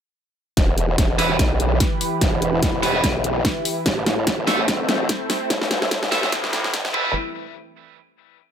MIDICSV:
0, 0, Header, 1, 6, 480
1, 0, Start_track
1, 0, Key_signature, 1, "minor"
1, 0, Tempo, 410959
1, 667, Time_signature, 4, 2, 24, 8
1, 9947, End_track
2, 0, Start_track
2, 0, Title_t, "Distorted electric guitar"
2, 0, Program_c, 0, 30
2, 1385, Note_on_c, 0, 64, 72
2, 1390, Note_on_c, 0, 71, 83
2, 1394, Note_on_c, 0, 55, 67
2, 1522, Note_off_c, 0, 55, 0
2, 1522, Note_off_c, 0, 64, 0
2, 1522, Note_off_c, 0, 71, 0
2, 3304, Note_on_c, 0, 64, 83
2, 3310, Note_on_c, 0, 71, 90
2, 3314, Note_on_c, 0, 55, 79
2, 3509, Note_off_c, 0, 55, 0
2, 3510, Note_off_c, 0, 64, 0
2, 3510, Note_off_c, 0, 71, 0
2, 5223, Note_on_c, 0, 76, 94
2, 5230, Note_on_c, 0, 69, 71
2, 5235, Note_on_c, 0, 60, 70
2, 5362, Note_off_c, 0, 60, 0
2, 5362, Note_off_c, 0, 69, 0
2, 5362, Note_off_c, 0, 76, 0
2, 7144, Note_on_c, 0, 76, 96
2, 7149, Note_on_c, 0, 69, 77
2, 7154, Note_on_c, 0, 60, 80
2, 7349, Note_off_c, 0, 60, 0
2, 7350, Note_off_c, 0, 69, 0
2, 7350, Note_off_c, 0, 76, 0
2, 8103, Note_on_c, 0, 64, 79
2, 8109, Note_on_c, 0, 71, 91
2, 8114, Note_on_c, 0, 55, 70
2, 8290, Note_off_c, 0, 55, 0
2, 8290, Note_off_c, 0, 64, 0
2, 8290, Note_off_c, 0, 71, 0
2, 9947, End_track
3, 0, Start_track
3, 0, Title_t, "Analog synth pad"
3, 0, Program_c, 1, 89
3, 666, Note_on_c, 1, 52, 77
3, 666, Note_on_c, 1, 67, 71
3, 666, Note_on_c, 1, 71, 86
3, 667, Note_on_c, 1, 64, 68
3, 4468, Note_off_c, 1, 52, 0
3, 4468, Note_off_c, 1, 67, 0
3, 4468, Note_off_c, 1, 71, 0
3, 4507, Note_on_c, 1, 57, 78
3, 4507, Note_on_c, 1, 60, 72
3, 8060, Note_off_c, 1, 64, 0
3, 8071, Note_off_c, 1, 57, 0
3, 8071, Note_off_c, 1, 60, 0
3, 9947, End_track
4, 0, Start_track
4, 0, Title_t, "Detuned saw bass"
4, 0, Program_c, 2, 39
4, 7387, Note_on_c, 2, 33, 95
4, 7850, Note_off_c, 2, 33, 0
4, 9947, End_track
5, 0, Start_track
5, 0, Title_t, "Wobble bass"
5, 0, Program_c, 3, 39
5, 668, Note_on_c, 3, 28, 94
5, 1130, Note_off_c, 3, 28, 0
5, 1147, Note_on_c, 3, 28, 97
5, 1610, Note_off_c, 3, 28, 0
5, 1627, Note_on_c, 3, 35, 101
5, 2090, Note_off_c, 3, 35, 0
5, 2587, Note_on_c, 3, 28, 97
5, 3050, Note_off_c, 3, 28, 0
5, 3067, Note_on_c, 3, 28, 97
5, 3530, Note_off_c, 3, 28, 0
5, 3547, Note_on_c, 3, 35, 102
5, 4010, Note_off_c, 3, 35, 0
5, 4507, Note_on_c, 3, 33, 101
5, 4970, Note_off_c, 3, 33, 0
5, 4987, Note_on_c, 3, 33, 98
5, 5450, Note_off_c, 3, 33, 0
5, 5467, Note_on_c, 3, 28, 102
5, 5930, Note_off_c, 3, 28, 0
5, 6427, Note_on_c, 3, 33, 103
5, 6890, Note_off_c, 3, 33, 0
5, 6907, Note_on_c, 3, 33, 98
5, 7370, Note_off_c, 3, 33, 0
5, 7867, Note_on_c, 3, 31, 101
5, 8090, Note_off_c, 3, 31, 0
5, 8107, Note_on_c, 3, 28, 98
5, 8330, Note_off_c, 3, 28, 0
5, 9947, End_track
6, 0, Start_track
6, 0, Title_t, "Drums"
6, 667, Note_on_c, 9, 36, 98
6, 667, Note_on_c, 9, 38, 47
6, 667, Note_on_c, 9, 42, 77
6, 784, Note_off_c, 9, 36, 0
6, 784, Note_off_c, 9, 38, 0
6, 784, Note_off_c, 9, 42, 0
6, 907, Note_on_c, 9, 42, 51
6, 1024, Note_off_c, 9, 42, 0
6, 1147, Note_on_c, 9, 36, 95
6, 1147, Note_on_c, 9, 38, 51
6, 1147, Note_on_c, 9, 42, 81
6, 1264, Note_off_c, 9, 36, 0
6, 1264, Note_off_c, 9, 38, 0
6, 1264, Note_off_c, 9, 42, 0
6, 1387, Note_on_c, 9, 46, 67
6, 1504, Note_off_c, 9, 46, 0
6, 1627, Note_on_c, 9, 36, 99
6, 1627, Note_on_c, 9, 38, 55
6, 1627, Note_on_c, 9, 42, 83
6, 1743, Note_off_c, 9, 36, 0
6, 1743, Note_off_c, 9, 38, 0
6, 1743, Note_off_c, 9, 42, 0
6, 1867, Note_on_c, 9, 42, 56
6, 1984, Note_off_c, 9, 42, 0
6, 2106, Note_on_c, 9, 38, 55
6, 2106, Note_on_c, 9, 42, 85
6, 2107, Note_on_c, 9, 36, 99
6, 2223, Note_off_c, 9, 38, 0
6, 2223, Note_off_c, 9, 42, 0
6, 2224, Note_off_c, 9, 36, 0
6, 2346, Note_on_c, 9, 46, 93
6, 2463, Note_off_c, 9, 46, 0
6, 2586, Note_on_c, 9, 38, 58
6, 2586, Note_on_c, 9, 42, 81
6, 2587, Note_on_c, 9, 36, 99
6, 2703, Note_off_c, 9, 36, 0
6, 2703, Note_off_c, 9, 38, 0
6, 2703, Note_off_c, 9, 42, 0
6, 2826, Note_on_c, 9, 42, 56
6, 2943, Note_off_c, 9, 42, 0
6, 3066, Note_on_c, 9, 38, 61
6, 3066, Note_on_c, 9, 42, 84
6, 3067, Note_on_c, 9, 36, 100
6, 3183, Note_off_c, 9, 38, 0
6, 3183, Note_off_c, 9, 42, 0
6, 3184, Note_off_c, 9, 36, 0
6, 3307, Note_on_c, 9, 46, 65
6, 3423, Note_off_c, 9, 46, 0
6, 3547, Note_on_c, 9, 36, 98
6, 3547, Note_on_c, 9, 38, 68
6, 3547, Note_on_c, 9, 42, 85
6, 3664, Note_off_c, 9, 36, 0
6, 3664, Note_off_c, 9, 38, 0
6, 3664, Note_off_c, 9, 42, 0
6, 3787, Note_on_c, 9, 42, 58
6, 3904, Note_off_c, 9, 42, 0
6, 4027, Note_on_c, 9, 36, 97
6, 4027, Note_on_c, 9, 38, 72
6, 4027, Note_on_c, 9, 42, 86
6, 4144, Note_off_c, 9, 36, 0
6, 4144, Note_off_c, 9, 38, 0
6, 4144, Note_off_c, 9, 42, 0
6, 4267, Note_on_c, 9, 46, 95
6, 4383, Note_off_c, 9, 46, 0
6, 4507, Note_on_c, 9, 36, 98
6, 4507, Note_on_c, 9, 38, 72
6, 4507, Note_on_c, 9, 42, 78
6, 4623, Note_off_c, 9, 38, 0
6, 4623, Note_off_c, 9, 42, 0
6, 4624, Note_off_c, 9, 36, 0
6, 4747, Note_on_c, 9, 38, 73
6, 4747, Note_on_c, 9, 42, 55
6, 4864, Note_off_c, 9, 38, 0
6, 4864, Note_off_c, 9, 42, 0
6, 4987, Note_on_c, 9, 36, 101
6, 4987, Note_on_c, 9, 38, 82
6, 4987, Note_on_c, 9, 42, 85
6, 5103, Note_off_c, 9, 38, 0
6, 5103, Note_off_c, 9, 42, 0
6, 5104, Note_off_c, 9, 36, 0
6, 5227, Note_on_c, 9, 38, 82
6, 5227, Note_on_c, 9, 46, 65
6, 5343, Note_off_c, 9, 38, 0
6, 5343, Note_off_c, 9, 46, 0
6, 5467, Note_on_c, 9, 36, 100
6, 5467, Note_on_c, 9, 38, 83
6, 5467, Note_on_c, 9, 42, 84
6, 5584, Note_off_c, 9, 36, 0
6, 5584, Note_off_c, 9, 38, 0
6, 5584, Note_off_c, 9, 42, 0
6, 5707, Note_on_c, 9, 38, 87
6, 5707, Note_on_c, 9, 42, 55
6, 5824, Note_off_c, 9, 38, 0
6, 5824, Note_off_c, 9, 42, 0
6, 5947, Note_on_c, 9, 36, 98
6, 5947, Note_on_c, 9, 38, 87
6, 5947, Note_on_c, 9, 42, 83
6, 6064, Note_off_c, 9, 36, 0
6, 6064, Note_off_c, 9, 38, 0
6, 6064, Note_off_c, 9, 42, 0
6, 6187, Note_on_c, 9, 38, 90
6, 6187, Note_on_c, 9, 46, 91
6, 6304, Note_off_c, 9, 38, 0
6, 6304, Note_off_c, 9, 46, 0
6, 6427, Note_on_c, 9, 36, 100
6, 6427, Note_on_c, 9, 38, 94
6, 6427, Note_on_c, 9, 42, 76
6, 6544, Note_off_c, 9, 36, 0
6, 6544, Note_off_c, 9, 38, 0
6, 6544, Note_off_c, 9, 42, 0
6, 6559, Note_on_c, 9, 38, 83
6, 6667, Note_off_c, 9, 38, 0
6, 6667, Note_on_c, 9, 38, 97
6, 6667, Note_on_c, 9, 42, 52
6, 6784, Note_off_c, 9, 38, 0
6, 6784, Note_off_c, 9, 42, 0
6, 6799, Note_on_c, 9, 38, 89
6, 6907, Note_off_c, 9, 38, 0
6, 6907, Note_on_c, 9, 36, 99
6, 6907, Note_on_c, 9, 38, 99
6, 6907, Note_on_c, 9, 42, 80
6, 7024, Note_off_c, 9, 36, 0
6, 7024, Note_off_c, 9, 38, 0
6, 7024, Note_off_c, 9, 42, 0
6, 7039, Note_on_c, 9, 38, 91
6, 7147, Note_off_c, 9, 38, 0
6, 7147, Note_on_c, 9, 38, 104
6, 7147, Note_on_c, 9, 46, 62
6, 7264, Note_off_c, 9, 38, 0
6, 7264, Note_off_c, 9, 46, 0
6, 7278, Note_on_c, 9, 38, 91
6, 7387, Note_off_c, 9, 38, 0
6, 7387, Note_on_c, 9, 36, 103
6, 7387, Note_on_c, 9, 38, 103
6, 7387, Note_on_c, 9, 42, 81
6, 7503, Note_off_c, 9, 38, 0
6, 7503, Note_off_c, 9, 42, 0
6, 7504, Note_off_c, 9, 36, 0
6, 7519, Note_on_c, 9, 38, 92
6, 7627, Note_off_c, 9, 38, 0
6, 7627, Note_on_c, 9, 38, 107
6, 7627, Note_on_c, 9, 42, 54
6, 7744, Note_off_c, 9, 38, 0
6, 7744, Note_off_c, 9, 42, 0
6, 7759, Note_on_c, 9, 38, 90
6, 7867, Note_on_c, 9, 36, 98
6, 7868, Note_off_c, 9, 38, 0
6, 7868, Note_on_c, 9, 38, 111
6, 7868, Note_on_c, 9, 42, 80
6, 7984, Note_off_c, 9, 36, 0
6, 7984, Note_off_c, 9, 38, 0
6, 7984, Note_off_c, 9, 42, 0
6, 7998, Note_on_c, 9, 38, 97
6, 8107, Note_on_c, 9, 36, 120
6, 8115, Note_off_c, 9, 38, 0
6, 8224, Note_off_c, 9, 36, 0
6, 9947, End_track
0, 0, End_of_file